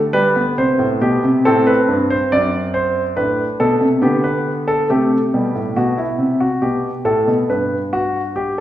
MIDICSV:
0, 0, Header, 1, 2, 480
1, 0, Start_track
1, 0, Tempo, 867052
1, 1278, Time_signature, 4, 2, 24, 8
1, 4763, End_track
2, 0, Start_track
2, 0, Title_t, "Grand piano"
2, 0, Program_c, 0, 0
2, 0, Note_on_c, 0, 50, 59
2, 73, Note_on_c, 0, 71, 95
2, 75, Note_on_c, 0, 55, 76
2, 193, Note_off_c, 0, 55, 0
2, 200, Note_on_c, 0, 59, 65
2, 223, Note_off_c, 0, 71, 0
2, 302, Note_off_c, 0, 50, 0
2, 320, Note_on_c, 0, 48, 65
2, 322, Note_on_c, 0, 72, 86
2, 435, Note_off_c, 0, 48, 0
2, 436, Note_on_c, 0, 45, 67
2, 468, Note_off_c, 0, 72, 0
2, 552, Note_off_c, 0, 45, 0
2, 562, Note_on_c, 0, 47, 76
2, 562, Note_on_c, 0, 67, 83
2, 676, Note_off_c, 0, 47, 0
2, 685, Note_on_c, 0, 48, 73
2, 709, Note_off_c, 0, 67, 0
2, 779, Note_off_c, 0, 59, 0
2, 797, Note_off_c, 0, 48, 0
2, 804, Note_on_c, 0, 69, 91
2, 806, Note_on_c, 0, 60, 71
2, 808, Note_on_c, 0, 45, 74
2, 917, Note_off_c, 0, 69, 0
2, 923, Note_on_c, 0, 71, 82
2, 954, Note_off_c, 0, 45, 0
2, 1043, Note_on_c, 0, 43, 65
2, 1070, Note_off_c, 0, 71, 0
2, 1165, Note_on_c, 0, 72, 83
2, 1191, Note_off_c, 0, 43, 0
2, 1278, Note_off_c, 0, 72, 0
2, 1285, Note_on_c, 0, 74, 90
2, 1287, Note_on_c, 0, 42, 70
2, 1431, Note_off_c, 0, 74, 0
2, 1516, Note_on_c, 0, 72, 85
2, 1665, Note_off_c, 0, 72, 0
2, 1739, Note_off_c, 0, 60, 0
2, 1747, Note_off_c, 0, 42, 0
2, 1751, Note_on_c, 0, 62, 57
2, 1753, Note_on_c, 0, 71, 78
2, 1754, Note_on_c, 0, 45, 58
2, 1902, Note_off_c, 0, 71, 0
2, 1903, Note_off_c, 0, 45, 0
2, 1992, Note_on_c, 0, 69, 86
2, 1993, Note_on_c, 0, 47, 79
2, 2108, Note_on_c, 0, 48, 65
2, 2110, Note_off_c, 0, 47, 0
2, 2142, Note_off_c, 0, 69, 0
2, 2218, Note_off_c, 0, 62, 0
2, 2224, Note_on_c, 0, 59, 70
2, 2225, Note_on_c, 0, 50, 71
2, 2228, Note_off_c, 0, 48, 0
2, 2229, Note_on_c, 0, 67, 75
2, 2346, Note_on_c, 0, 71, 72
2, 2348, Note_off_c, 0, 67, 0
2, 2498, Note_off_c, 0, 71, 0
2, 2589, Note_on_c, 0, 69, 88
2, 2695, Note_off_c, 0, 59, 0
2, 2696, Note_off_c, 0, 50, 0
2, 2708, Note_off_c, 0, 69, 0
2, 2711, Note_on_c, 0, 57, 69
2, 2712, Note_on_c, 0, 48, 67
2, 2713, Note_on_c, 0, 67, 73
2, 2861, Note_off_c, 0, 57, 0
2, 2862, Note_off_c, 0, 48, 0
2, 2955, Note_on_c, 0, 47, 65
2, 2956, Note_on_c, 0, 55, 55
2, 3072, Note_off_c, 0, 47, 0
2, 3074, Note_on_c, 0, 45, 56
2, 3105, Note_off_c, 0, 55, 0
2, 3180, Note_off_c, 0, 67, 0
2, 3191, Note_off_c, 0, 45, 0
2, 3191, Note_on_c, 0, 66, 77
2, 3192, Note_on_c, 0, 47, 68
2, 3308, Note_on_c, 0, 64, 58
2, 3310, Note_off_c, 0, 66, 0
2, 3343, Note_off_c, 0, 47, 0
2, 3424, Note_on_c, 0, 48, 67
2, 3459, Note_off_c, 0, 64, 0
2, 3545, Note_on_c, 0, 66, 71
2, 3576, Note_off_c, 0, 48, 0
2, 3663, Note_on_c, 0, 47, 60
2, 3664, Note_on_c, 0, 67, 70
2, 3667, Note_off_c, 0, 66, 0
2, 3816, Note_off_c, 0, 47, 0
2, 3816, Note_off_c, 0, 67, 0
2, 3902, Note_on_c, 0, 45, 65
2, 3903, Note_on_c, 0, 69, 79
2, 4025, Note_off_c, 0, 45, 0
2, 4028, Note_on_c, 0, 47, 59
2, 4056, Note_off_c, 0, 69, 0
2, 4148, Note_off_c, 0, 47, 0
2, 4149, Note_on_c, 0, 43, 58
2, 4150, Note_on_c, 0, 71, 66
2, 4301, Note_off_c, 0, 71, 0
2, 4389, Note_on_c, 0, 66, 82
2, 4540, Note_off_c, 0, 66, 0
2, 4627, Note_on_c, 0, 67, 75
2, 4748, Note_off_c, 0, 67, 0
2, 4763, Note_off_c, 0, 43, 0
2, 4763, End_track
0, 0, End_of_file